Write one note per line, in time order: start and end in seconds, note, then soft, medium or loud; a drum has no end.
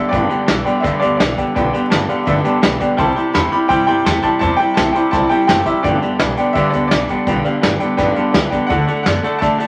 0.00 0.10 G2 medium
0.00 0.11 D3 medium
0.00 0.11 G3 soft
0.00 0.12 B3 soft
0.00 0.12 D4 soft
0.00 0.12 G4 medium
0.00 0.11 E5 medium
0.09 0.28 G2 medium
0.09 0.30 G2 medium
0.09 0.28 D3 medium
0.09 0.30 D3 medium
0.09 0.30 G3 medium
0.09 0.22 B4 loud
0.09 0.84 D5 medium
0.09 0.22 D5 medium
0.09 0.22 G5 loud
0.13 0.28 G1 loud
0.13 0.30 B3 medium
0.13 0.30 D4 medium
0.13 0.29 G4 medium
0.13 kick loud
0.13 closed hi-hat medium
0.29 0.45 G2 medium
0.29 0.46 D3 medium
0.29 0.46 G3 soft
0.29 0.47 B3 soft
0.29 0.48 D4 soft
0.29 0.48 G4 medium
0.29 0.40 B4 medium
0.29 0.40 D5 medium
0.29 0.40 G5 medium
0.29 muted upright bass stroke medium
0.29 closed hi-hat medium
0.46 0.64 B1 loud
0.46 0.63 G2 medium
0.46 0.64 E3 medium
0.46 0.66 G3 medium
0.46 0.66 B3 medium
0.46 0.66 D4 medium
0.46 0.65 G4 medium
0.46 0.58 B4 medium
0.46 0.58 D5 medium
0.46 0.58 G5 medium
0.46 snare loud
0.46 closed hi-hat medium
0.64 0.81 G2 medium
0.64 0.82 D3 medium
0.64 0.84 B3 medium
0.64 0.84 D4 medium
0.64 0.84 G4 medium
0.64 0.76 B4 medium
0.64 0.76 D5 medium
0.64 0.76 G5 loud
0.64 muted upright bass stroke medium
0.64 closed hi-hat medium
0.69 0.84 G3 medium
0.80 0.99 G2 medium
0.80 0.99 D3 medium
0.80 0.94 B4 medium
0.80 0.94 D5 medium
0.80 1.00 E5 medium
0.80 0.94 G5 loud
0.84 1.00 D2 medium
0.84 1.02 G2 medium
0.84 1.02 D3 medium
0.84 1.02 G3 medium
0.84 1.02 B3 medium
0.84 1.01 D4 medium
0.84 1.00 G4 medium
0.84 kick loud
0.84 snare soft
0.84 closed hi-hat medium
1.00 1.18 D2 medium
1.00 1.17 G2 medium
1.00 1.17 D3 loud
1.00 1.19 B3 soft
1.00 1.20 D4 medium
1.00 1.20 G4 medium
1.00 1.12 B4 medium
1.00 1.15 D5 medium
1.00 1.12 D5 medium
1.00 1.12 F5 medium
1.00 closed hi-hat medium
1.04 1.18 G3 soft
1.17 1.35 B1 medium
1.17 1.35 G2 medium
1.17 1.36 E3 medium
1.17 1.38 G3 medium
1.17 1.38 B3 medium
1.17 1.30 B4 medium
1.17 1.68 D5 medium
1.17 1.30 D5 medium
1.17 1.30 G5 medium
1.17 snare loud
1.17 closed hi-hat loud
1.21 1.37 D4 medium
1.21 1.36 G4 medium
1.37 1.54 G2 medium
1.37 1.54 D3 medium
1.37 1.56 G3 soft
1.37 1.56 B3 medium
1.37 1.56 D4 soft
1.37 1.55 G4 medium
1.37 1.48 B4 medium
1.37 1.48 D5 medium
1.37 1.48 G5 medium
1.37 muted upright bass stroke medium
1.37 kick medium
1.37 closed hi-hat medium
1.55 1.71 B1 loud
1.55 1.71 G2 medium
1.55 1.73 G2 medium
1.55 1.71 D3 loud
1.55 1.74 D3 medium
1.55 1.74 G3 medium
1.55 1.74 B3 medium
1.55 1.74 D4 medium
1.55 1.72 G4 medium
1.55 1.66 B4 loud
1.55 1.66 D5 medium
1.55 1.66 G5 loud
1.55 kick loud
1.55 closed hi-hat medium
1.73 1.89 G2 medium
1.73 1.89 D3 medium
1.73 1.90 G3 soft
1.73 1.91 B3 medium
1.73 1.92 D4 medium
1.73 1.91 G4 medium
1.73 1.84 B4 medium
1.73 1.84 D5 medium
1.73 1.84 G5 loud
1.73 muted upright bass stroke medium
1.73 closed hi-hat medium
1.90 2.07 G1 medium
1.90 2.07 G2 medium
1.90 2.07 E3 medium
1.90 2.09 G3 medium
1.90 2.09 B3 medium
1.90 2.09 D4 medium
1.90 2.08 G4 medium
1.90 2.02 B4 medium
1.90 2.02 D5 medium
1.90 2.02 A5 loud
1.90 snare loud
1.90 closed hi-hat loud
2.08 2.25 G2 medium
2.08 2.25 D3 medium
2.08 2.25 G3 medium
2.08 2.26 B3 medium
2.08 2.26 D4 medium
2.08 2.26 G4 medium
2.08 2.20 B4 medium
2.08 2.20 D5 medium
2.08 2.20 F5 medium
2.08 muted upright bass stroke medium
2.08 closed hi-hat medium
2.25 2.42 G1 medium
2.25 2.44 G2 loud
2.25 2.43 G2 medium
2.25 2.44 D3 loud
2.25 2.43 D3 medium
2.25 2.45 G3 medium
2.25 2.45 B3 loud
2.25 2.44 D4 loud
2.25 2.43 G4 loud
2.25 2.38 B4 loud
2.25 2.38 D5 medium
2.25 2.38 E5 loud
2.25 kick loud
2.25 closed hi-hat medium
2.44 2.60 G2 medium
2.44 2.61 D3 medium
2.44 2.61 G3 medium
2.44 2.61 B3 medium
2.44 2.62 D4 medium
2.44 2.62 G4 medium
2.44 2.55 B4 medium
2.44 2.56 D5 medium
2.44 2.55 A5 loud
2.44 closed hi-hat medium
2.62 2.79 B1 medium
2.62 2.78 G2 medium
2.62 2.79 E3 loud
2.62 2.80 G3 medium
2.62 2.80 B3 medium
2.62 2.80 D4 medium
2.62 2.79 G4 medium
2.62 2.73 B4 medium
2.62 2.73 D5 medium
2.62 2.73 G5 medium
2.62 snare loud
2.62 closed hi-hat medium
2.80 2.96 G2 medium
2.80 2.97 D3 medium
2.80 2.99 G3 soft
2.80 2.99 B3 medium
2.80 2.99 D4 medium
2.80 2.98 G4 medium
2.80 2.91 B4 medium
2.80 2.91 D5 medium
2.80 2.91 G5 medium
2.80 muted upright bass stroke medium
2.80 kick medium
2.80 closed hi-hat medium
2.97 3.14 C2 loud
2.97 3.14 C3 medium
2.97 3.17 C3 medium
2.97 3.14 G3 loud
2.97 3.17 G3 medium
2.97 3.17 C4 medium
2.97 3.16 E4 medium
2.97 3.09 C5 medium
2.97 3.09 E5 medium
2.97 3.09 G5 loud
2.97 3.32 A5 loud
2.97 kick loud
2.97 closed hi-hat medium
3.01 3.15 G4 medium
3.15 3.32 C3 medium
3.15 3.32 G3 medium
3.15 3.33 C4 soft
3.15 3.34 E4 medium
3.15 3.34 G4 soft
3.15 3.27 C5 medium
3.15 3.27 E5 medium
3.15 3.27 A5 medium
3.15 muted upright bass stroke medium
3.15 closed hi-hat medium
3.33 3.50 E2 medium
3.33 3.50 C3 medium
3.33 3.52 G3 medium
3.33 3.50 A3 medium
3.33 3.52 C4 medium
3.33 3.52 E4 medium
3.33 3.51 G4 medium
3.33 3.45 C5 medium
3.33 3.45 E5 medium
3.33 3.45 A5 medium
3.33 3.51 B5 medium
3.33 snare loud
3.33 closed hi-hat medium
3.51 3.68 C3 medium
3.51 3.68 G3 medium
3.51 3.69 E4 soft
3.51 3.70 G4 medium
3.51 3.62 C5 medium
3.51 3.62 E5 medium
3.51 3.62 G5 medium
3.51 3.57 B5 loud
3.51 muted upright bass stroke medium
3.51 closed hi-hat medium
3.55 3.69 C4 soft
3.68 3.85 G2 medium
3.68 3.86 C3 medium
3.68 3.87 C3 medium
3.68 3.86 G3 medium
3.68 3.88 G3 medium
3.68 3.88 C4 medium
3.68 3.88 E4 loud
3.68 3.87 G4 medium
3.68 3.80 C5 loud
3.68 3.80 E5 medium
3.68 3.80 G5 loud
3.68 3.85 G5 loud
3.68 kick loud
3.68 closed hi-hat medium
3.87 4.03 G2 medium
3.87 4.03 C3 medium
3.87 4.04 G3 medium
3.87 4.05 C4 soft
3.87 4.06 E4 medium
3.87 4.06 G4 medium
3.87 3.98 C5 medium
3.87 3.98 E5 medium
3.87 4.24 G5 loud
3.87 3.98 A5 medium
3.87 closed hi-hat medium
4.05 4.21 E2 medium
4.05 4.21 C3 medium
4.05 4.23 G3 medium
4.05 4.22 A3 loud
4.05 4.24 C4 medium
4.05 4.23 E4 medium
4.05 4.22 G4 medium
4.05 4.16 C5 medium
4.05 4.16 E5 medium
4.05 4.16 A5 medium
4.05 snare loud
4.05 closed hi-hat medium
4.23 4.39 C3 medium
4.23 4.39 G3 medium
4.23 4.40 C4 soft
4.23 4.40 E4 soft
4.23 4.41 G4 medium
4.23 4.34 C5 medium
4.23 4.34 E5 medium
4.23 4.28 A5 loud
4.23 4.34 A5 medium
4.23 kick medium
4.23 closed hi-hat medium
4.39 4.57 E2 loud
4.39 4.59 C3 medium
4.39 4.57 C3 medium
4.39 4.59 G3 medium
4.39 4.58 G3 loud
4.39 4.59 C4 medium
4.39 4.59 E4 medium
4.39 4.58 G4 loud
4.39 4.52 C5 loud
4.39 4.52 E5 medium
4.39 4.57 A5 loud
4.39 4.52 A5 loud
4.39 kick loud
4.39 closed hi-hat medium
4.57 4.75 C3 medium
4.57 4.76 G3 medium
4.57 4.77 E4 soft
4.57 4.77 G4 medium
4.57 4.69 C5 medium
4.57 4.69 E5 medium
4.57 4.76 G5 loud
4.57 4.69 G5 medium
4.57 closed hi-hat medium
4.61 4.76 C4 soft
4.74 4.93 C2 medium
4.74 4.93 C3 medium
4.74 4.95 G3 medium
4.74 4.93 A3 medium
4.74 4.95 C4 medium
4.74 4.95 E4 medium
4.74 4.87 C5 medium
4.74 4.87 E5 medium
4.74 4.87 G5 medium
4.74 4.94 A5 medium
4.74 snare loud
4.74 closed hi-hat medium
4.79 4.93 G4 medium
4.93 5.11 C3 medium
4.93 5.12 G3 medium
4.93 5.13 E4 medium
4.93 5.13 G4 medium
4.93 5.05 C5 medium
4.93 5.05 E5 medium
4.93 5.12 G5 medium
4.93 5.05 A5 medium
4.93 closed hi-hat medium
4.97 5.13 C4 medium
5.11 5.28 C2 medium
5.11 5.29 C3 medium
5.11 5.31 C3 medium
5.11 5.29 G3 medium
5.11 5.31 G3 medium
5.11 5.32 C4 medium
5.11 5.31 E4 medium
5.11 5.29 G4 medium
5.11 5.23 C5 loud
5.11 5.23 E5 medium
5.11 5.23 G5 loud
5.11 5.28 A5 loud
5.11 kick loud
5.11 snare soft
5.11 closed hi-hat medium
5.29 5.46 C3 medium
5.29 5.47 G3 medium
5.29 5.47 C4 medium
5.29 5.47 E4 medium
5.29 5.48 G4 medium
5.29 5.41 C5 medium
5.29 5.41 E5 medium
5.29 5.46 G5 loud
5.29 5.41 A5 medium
5.29 muted upright bass stroke medium
5.29 closed hi-hat medium
5.47 5.64 F#1 loud
5.47 5.64 C3 medium
5.47 5.66 G3 medium
5.47 5.64 A3 loud
5.47 5.66 C4 medium
5.47 5.66 E4 medium
5.47 5.64 G4 medium
5.47 5.59 C5 medium
5.47 5.59 E5 medium
5.47 5.66 G5 loud
5.47 5.59 A5 medium
5.47 snare loud
5.47 closed hi-hat medium
5.66 5.82 C3 medium
5.66 5.82 G3 medium
5.66 5.84 C4 soft
5.66 5.84 E4 soft
5.66 5.84 G4 medium
5.66 5.77 C5 medium
5.66 5.83 E5 loud
5.66 5.77 E5 medium
5.66 5.77 G5 medium
5.66 kick medium
5.66 closed hi-hat medium
5.83 6.00 G1 loud
5.83 6.00 G2 medium
5.83 6.02 G2 medium
5.83 6.00 D3 loud
5.83 6.02 D3 medium
5.83 6.02 G3 medium
5.83 6.02 B3 medium
5.83 6.02 D4 medium
5.83 6.01 G4 medium
5.83 5.95 B4 medium
5.83 6.51 D5 medium
5.83 5.95 D5 medium
5.83 5.95 G5 loud
5.83 kick loud
5.83 closed hi-hat medium
6.01 6.18 G2 medium
6.01 6.18 D3 medium
6.01 6.19 G3 soft
6.01 6.20 B3 soft
6.01 6.20 D4 soft
6.01 6.20 G4 soft
6.01 6.13 B4 medium
6.01 6.13 D5 medium
6.01 6.13 E5 medium
6.01 muted upright bass stroke medium
6.01 closed hi-hat medium
6.19 6.36 B1 medium
6.19 6.36 G2 medium
6.19 6.36 E3 loud
6.19 6.38 G3 medium
6.19 6.38 B3 medium
6.19 6.37 D4 medium
6.19 6.36 G4 medium
6.19 6.30 B4 medium
6.19 6.30 D5 medium
6.19 6.30 G5 medium
6.19 snare loud
6.19 closed hi-hat medium
6.37 6.53 G2 medium
6.37 6.54 D3 medium
6.37 6.55 G3 medium
6.37 6.55 B3 medium
6.37 6.55 D4 medium
6.37 6.55 G4 medium
6.37 6.49 B4 medium
6.37 6.49 D5 medium
6.37 6.49 G5 loud
6.37 closed hi-hat medium
6.53 6.71 D2 medium
6.53 6.73 G2 medium
6.53 6.72 G2 medium
6.53 6.73 D3 medium
6.53 6.72 D3 loud
6.53 6.74 G3 medium
6.53 6.74 B3 medium
6.53 6.73 D4 medium
6.53 6.72 G4 medium
6.53 6.66 B4 loud
6.53 6.66 D5 medium
6.53 6.73 E5 medium
6.53 6.66 G5 loud
6.53 kick loud
6.53 closed hi-hat medium
6.70 6.89 D2 medium
6.70 6.90 G2 medium
6.70 6.90 D3 medium
6.70 6.91 D4 medium
6.70 6.91 G4 medium
6.70 6.86 D5 medium
6.70 closed hi-hat medium
6.74 6.90 G3 soft
6.74 6.90 B3 medium
6.74 6.85 B4 medium
6.74 6.85 D5 medium
6.74 6.85 G5 medium
6.88 7.07 B1 medium
6.88 7.07 G2 medium
6.88 7.08 E3 loud
6.88 7.09 G3 medium
6.88 7.09 B3 medium
6.88 7.39 D5 medium
6.88 7.02 D5 medium
6.88 snare loud
6.88 closed hi-hat medium
6.92 7.09 D4 medium
6.92 7.08 G4 medium
6.92 7.02 B4 medium
6.92 7.02 G5 medium
7.09 7.26 G2 medium
7.09 7.26 D3 medium
7.09 7.28 G3 soft
7.09 7.28 B3 soft
7.09 7.28 D4 medium
7.09 7.27 G4 medium
7.09 7.20 B4 medium
7.09 7.20 D5 medium
7.09 7.20 G5 medium
7.09 kick medium
7.09 closed hi-hat medium
7.27 7.42 B1 loud
7.27 7.43 G2 medium
7.27 7.46 G2 medium
7.27 7.43 D3 medium
7.27 7.46 D3 medium
7.27 7.46 G3 medium
7.27 7.46 B3 medium
7.27 7.45 D4 medium
7.27 7.44 G4 medium
7.27 7.38 B4 loud
7.27 7.38 D5 medium
7.27 7.38 G5 loud
7.27 kick loud
7.27 closed hi-hat medium
7.44 7.60 G2 medium
7.44 7.61 D3 medium
7.44 7.62 G3 soft
7.44 7.63 B3 soft
7.44 7.64 D4 medium
7.44 7.63 G4 medium
7.44 7.56 B4 medium
7.44 7.56 D5 medium
7.44 7.56 F5 medium
7.44 closed hi-hat medium
7.61 7.79 G1 medium
7.61 7.78 G2 medium
7.61 7.79 E3 medium
7.61 7.81 G3 medium
7.61 7.81 B3 medium
7.61 7.82 D4 medium
7.61 7.73 B4 medium
7.61 7.73 D5 medium
7.61 7.73 G5 loud
7.61 snare loud
7.61 closed hi-hat medium
7.66 7.81 G4 medium
7.79 7.96 G2 medium
7.79 7.97 D3 medium
7.79 7.99 D4 medium
7.79 7.99 G4 medium
7.79 7.91 B4 medium
7.79 7.91 D5 medium
7.79 7.91 G5 loud
7.79 closed hi-hat medium
7.83 7.99 G3 medium
7.83 8.00 B3 medium
7.97 8.14 G1 medium
7.97 8.14 G2 medium
7.97 8.17 G2 loud
7.97 8.14 D3 medium
7.97 8.17 D3 loud
7.97 8.17 G3 medium
7.97 8.18 B3 loud
7.97 8.17 D4 medium
7.97 8.09 B4 loud
7.97 8.09 D5 loud
7.97 8.09 G5 loud
7.97 kick loud
7.97 snare soft
7.97 closed hi-hat medium
8.01 8.16 G4 loud
8.15 8.33 G2 medium
8.15 8.33 D3 medium
8.15 8.35 B3 medium
8.15 8.35 D4 medium
8.15 8.35 G4 medium
8.15 8.26 B4 medium
8.15 8.26 D5 medium
8.15 8.27 F5 medium
8.15 closed hi-hat medium
8.19 8.34 G3 soft
8.32 8.50 C#2 medium
8.32 8.50 G2 medium
8.32 8.51 E3 medium
8.32 8.53 G3 medium
8.32 8.53 B3 medium
8.32 8.44 B4 medium
8.32 8.44 D5 medium
8.32 8.44 E5 medium
8.32 snare loud
8.32 closed hi-hat loud
8.37 8.52 D4 medium
8.37 8.52 G4 medium
8.50 8.68 G2 medium
8.50 8.68 D3 medium
8.50 8.70 B3 medium
8.50 8.69 D4 medium
8.50 8.70 G4 medium
8.50 8.62 B4 medium
8.50 8.62 D5 medium
8.50 8.62 G5 medium
8.50 muted upright bass stroke medium
8.50 kick medium
8.50 closed hi-hat medium
8.55 8.70 G3 soft
8.67 8.88 D3 medium
8.67 8.86 D3 medium
8.67 8.86 A3 medium
8.67 8.88 A3 medium
8.67 8.88 D4 medium
8.67 8.88 F#4 medium
8.67 8.80 A4 loud
8.67 8.80 D5 medium
8.67 9.02 F#5 loud
8.67 8.80 F#5 loud
8.67 kick loud
8.67 closed hi-hat medium
8.71 8.86 D2 loud
8.71 8.87 A4 medium
8.87 9.04 D3 medium
8.87 9.04 A3 medium
8.87 9.05 D4 soft
8.87 9.06 F#4 soft
8.87 8.99 A4 medium
8.87 9.06 A4 medium
8.87 8.99 D5 medium
8.87 8.99 F#5 medium
8.87 closed hi-hat medium
9.03 9.21 F#2 medium
9.03 9.22 D3 medium
9.03 9.23 A3 medium
9.03 9.22 B3 medium
9.03 9.24 D4 medium
9.03 9.23 F#4 medium
9.03 9.17 A4 medium
9.03 9.17 D5 medium
9.03 9.41 F#5 medium
9.03 9.17 F#5 medium
9.03 snare loud
9.03 closed hi-hat medium
9.08 9.22 A4 medium
9.23 9.40 D3 medium
9.23 9.40 A3 medium
9.23 9.41 D4 soft
9.23 9.41 F#4 medium
9.23 9.41 A4 medium
9.23 9.34 A4 medium
9.23 9.34 D5 medium
9.23 9.34 F#5 medium
9.23 muted upright bass stroke medium
9.23 closed hi-hat medium
9.39 9.57 A2 medium
9.39 9.59 D3 medium
9.39 9.57 D3 medium
9.39 9.58 A3 medium
9.39 9.60 A3 medium
9.39 9.60 D4 medium
9.39 9.59 F#4 medium
9.39 9.52 A4 medium
9.39 9.52 D5 medium
9.39 9.52 E5 loud
9.39 9.67 A5 loud
9.39 kick loud
9.39 snare soft
9.39 closed hi-hat medium
9.43 9.58 A4 medium
9.58 9.67 A2 medium
9.58 9.67 D3 medium
9.58 9.67 A3 medium
9.58 9.67 D4 soft
9.58 9.67 F#4 medium
9.58 9.67 A4 medium
9.58 9.67 D5 medium
9.58 9.67 E5 medium
9.58 closed hi-hat medium